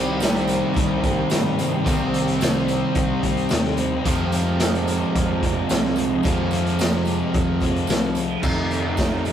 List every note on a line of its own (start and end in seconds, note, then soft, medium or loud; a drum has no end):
0.00 0.62 C2 loud
0.00 0.20 C3 medium
0.00 4.04 C3 medium
0.00 4.03 D#3 medium
0.00 0.21 G3 medium
0.00 4.05 G3 medium
0.00 0.22 C4 medium
0.00 4.00 C4 medium
0.00 4.05 C4 medium
0.00 4.01 G4 medium
0.00 4.05 G4 medium
0.00 1.83 A#4 medium
0.00 8.39 D#5 loud
0.20 1.28 C3 medium
0.20 1.02 G3 medium
0.20 1.02 C4 medium
0.20 snare loud
0.20 closed hi-hat loud
0.20 tambourine loud
0.36 closed hi-hat soft
0.47 closed hi-hat medium
0.47 tambourine medium
0.74 1.24 C2 loud
0.74 kick loud
0.74 closed hi-hat loud
0.74 tambourine soft
1.02 1.30 G3 medium
1.02 1.31 C4 medium
1.02 kick medium
1.02 closed hi-hat medium
1.29 1.79 G2 medium
1.29 1.85 C3 medium
1.29 1.60 G3 medium
1.29 1.58 C4 medium
1.29 snare loud
1.29 closed hi-hat loud
1.29 tambourine medium
1.59 1.85 G3 medium
1.59 1.87 C4 medium
1.59 closed hi-hat medium
1.59 tambourine medium
1.85 2.81 C2 loud
1.85 2.39 C3 medium
1.85 2.15 G3 medium
1.85 2.14 C4 medium
1.85 4.02 C5 medium
1.85 kick loud
1.85 closed hi-hat medium
1.85 tambourine medium
2.14 2.40 G3 medium
2.14 2.42 C4 medium
2.14 closed hi-hat medium
2.14 tambourine medium
2.28 closed hi-hat medium
2.41 3.50 C3 medium
2.41 3.24 G3 medium
2.41 3.23 C4 medium
2.41 snare loud
2.41 closed hi-hat medium
2.41 tambourine loud
2.68 closed hi-hat medium
2.68 tambourine medium
2.95 3.43 C2 loud
2.95 kick loud
2.95 closed hi-hat medium
2.95 tambourine soft
3.23 3.51 G3 medium
3.23 3.53 C4 medium
3.23 kick medium
3.23 closed hi-hat medium
3.37 closed hi-hat soft
3.49 3.98 D#2 loud
3.49 4.04 C3 medium
3.49 3.79 G3 medium
3.49 snare loud
3.49 closed hi-hat loud
3.49 tambourine medium
3.53 3.78 C4 medium
3.65 snare soft
3.77 4.04 G3 medium
3.77 7.28 C4 medium
3.77 closed hi-hat medium
3.77 tambourine medium
4.03 4.60 F2 medium
4.03 5.01 F2 loud
4.03 4.33 C3 medium
4.03 8.42 F3 medium
4.03 4.32 F3 loud
4.03 8.43 G#3 medium
4.03 8.40 C4 medium
4.03 8.43 C4 medium
4.03 8.40 F4 medium
4.03 8.43 F4 medium
4.03 8.39 G#4 medium
4.03 kick loud
4.03 closed hi-hat loud
4.03 tambourine medium
4.32 4.60 C3 medium
4.32 4.61 F3 medium
4.32 closed hi-hat medium
4.32 tambourine medium
4.60 5.68 F2 medium
4.60 5.43 C3 medium
4.60 5.42 F3 medium
4.60 snare loud
4.60 closed hi-hat loud
4.60 tambourine loud
4.75 closed hi-hat soft
4.88 closed hi-hat medium
4.88 tambourine medium
5.15 5.62 F2 loud
5.15 kick loud
5.15 closed hi-hat medium
5.15 tambourine soft
5.42 5.68 C3 medium
5.42 5.70 F3 medium
5.42 kick medium
5.42 closed hi-hat medium
5.68 6.18 C2 medium
5.68 6.23 F2 medium
5.68 5.99 C3 medium
5.68 5.97 F3 medium
5.68 snare loud
5.68 closed hi-hat loud
5.68 tambourine medium
5.85 snare soft
5.96 6.24 F3 medium
5.96 closed hi-hat medium
5.96 tambourine medium
6.00 6.23 C3 medium
6.23 6.77 F2 medium
6.23 7.20 F2 loud
6.23 6.53 C3 medium
6.23 6.51 F3 medium
6.23 kick loud
6.23 closed hi-hat loud
6.23 tambourine medium
6.51 6.79 C3 medium
6.51 6.80 F3 medium
6.51 closed hi-hat medium
6.51 tambourine medium
6.66 closed hi-hat soft
6.79 7.88 F2 medium
6.79 7.62 C3 medium
6.79 7.60 F3 medium
6.79 snare loud
6.79 closed hi-hat medium
6.79 tambourine loud
7.05 closed hi-hat medium
7.05 tambourine medium
7.34 7.81 F2 loud
7.34 kick loud
7.34 closed hi-hat medium
7.34 tambourine soft
7.60 7.88 C3 medium
7.60 7.90 F3 medium
7.60 kick medium
7.60 closed hi-hat medium
7.60 tambourine soft
7.76 closed hi-hat soft
7.87 8.35 C2 medium
7.87 8.42 F2 medium
7.87 8.17 C3 medium
7.87 8.15 F3 medium
7.87 snare loud
7.87 closed hi-hat loud
7.87 tambourine medium
8.15 8.43 C3 soft
8.15 8.42 F3 medium
8.15 closed hi-hat medium
8.15 tambourine medium
8.42 8.98 F2 medium
8.42 8.97 F2 medium
8.42 9.32 F2 medium
8.42 8.98 C3 medium
8.42 8.86 C3 medium
8.42 8.86 D#3 medium
8.42 8.85 F3 loud
8.42 8.84 A3 medium
8.42 8.84 D#4 loud
8.42 9.32 F4 medium
8.42 9.32 C5 medium
8.42 9.32 D#5 medium
8.42 9.32 A#5 medium
8.42 kick loud
8.42 crash loud
8.42 tambourine medium
8.70 closed hi-hat medium
8.70 tambourine soft
8.85 8.98 C3 medium
8.85 8.98 D#3 medium
8.85 8.99 F3 medium
8.85 8.99 A3 medium
8.85 9.00 D#4 medium
8.97 9.25 F2 medium
8.97 9.32 F2 medium
8.97 9.12 C3 medium
8.97 9.25 C3 loud
8.97 9.15 D#3 medium
8.97 9.11 F3 loud
8.97 9.13 A3 loud
8.97 9.13 D#4 loud
8.97 kick loud
8.97 snare loud
8.97 closed hi-hat medium
8.97 tambourine medium
9.11 9.25 C3 medium
9.11 9.26 F3 medium
9.11 9.27 A3 medium
9.11 9.27 D#4 medium
9.16 9.26 D#3 medium
9.25 9.32 F2 medium
9.25 9.32 C3 medium
9.25 9.32 D#3 medium
9.25 9.32 F3 medium
9.25 9.32 A3 medium
9.25 9.32 D#4 medium
9.25 closed hi-hat medium
9.25 tambourine medium